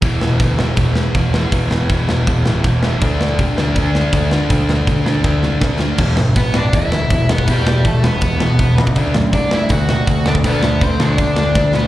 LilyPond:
<<
  \new Staff \with { instrumentName = "Overdriven electric guitar" } { \time 4/4 \key d \mixolydian \tempo 4 = 161 r1 | r1 | r1 | r1 |
r4 <b b'>8 <d' d''>8 <e' e''>4. <b b'>8 | <g g'>4 <a a'>8 <b b'>2 r8 | r4 <d' d''>8 <e' e''>8 <fis' fis''>4. <d' d''>8 | <b b'>4 <c' c''>8 <d' d''>2 <b b'>16 r16 | }
  \new Staff \with { instrumentName = "Distorted electric guitar" } { \clef bass \time 4/4 \key d \mixolydian <e, b, e>4 <e, b, e>8 <e, b, e>8 <e, b, e>4 <e, b, e>8 <e, b, e>8 | <e, b, e>4 <e, b, e>8 <e, b, e>8 <e, b, e>4 <e, b, e>8 <e, b, e>8 | <d a d'>4 <d a d'>8 <d a d'>8 <d a d'>4 <d a d'>8 <d a d'>8 | <d a d'>4 <d a d'>8 <d a d'>8 <d a d'>4 <d a d'>8 <d a d'>8 |
<e, b, e>8 <e, b,>8 <e, b,>8 <e, b,>8 <e, b,>8 <e, b,>8 <e, b,>8 <e, b,>8 | <e, b, e>8 <e, b,>8 <e, b,>8 <e, b,>8 <e, b,>8 <e, b,>8 <e, b,>8 <e, b,>8 | <d a d'>8 <d a>8 <d a>8 <d a>8 <d a>8 <d a>8 <d a>8 <d a>8 | <d a d'>8 <d a>8 <d a>8 <d a>8 <d a>8 <d a>8 <d a>8 <d a>8 | }
  \new Staff \with { instrumentName = "Grand piano" } { \clef bass \time 4/4 \key d \mixolydian e,,8 e,,8 d,8 e,,8 e,,4 e,,4 | e,,8 e,,8 e,,8 e,,8 e,,8 d,,8 e,,4 | d,8 d,8 c8 d,8 d,4 d,4 | d,8 d,8 d,8 d,8 d,8 c,8 d,4 |
e,,8 g,,8 d,,4 e,,8 d,8 e,,8 e,,8 | e,,8 e,,8 e,,8 e,,8 e,,8 e,,8 e,,8 cis,8 | d,8 fis,8 c,4 d,8 c8 d,8 d,8 | d,8 d,8 d,8 d,8 d,8 d,8 d,8 d,8 | }
  \new DrumStaff \with { instrumentName = "Drums" } \drummode { \time 4/4 <hho bd>8 sn8 <hho bd>8 sn8 <hho bd>8 sn8 <hho bd>8 sn8 | <hho bd>8 sn8 <hho bd>8 sn8 <hho bd>8 sn8 <hho bd>8 sn8 | <hho bd>8 sn8 <hho bd>8 sn8 <hho bd>8 sn8 <hho bd>8 sn8 | <hho bd>8 sn8 <hho bd>8 sn8 <bd sn>8 sn8 <bd sn>8 sn8 |
<cymc bd>8 sn8 <hho bd>8 sn8 <hho bd>8 sn8 <hho bd>8 sn16 bd16 | <hho bd>8 sn8 <hho bd>8 sn8 <hho bd>8 sn8 <hho bd>8 sn16 bd16 | <hho bd>8 sn8 <hho bd>8 sn8 <hho bd>8 sn8 <hho bd>8 sn16 bd16 | <hho bd>8 sn8 <hho bd>8 sn8 <hho bd>8 sn8 <bd sn>8 sn8 | }
>>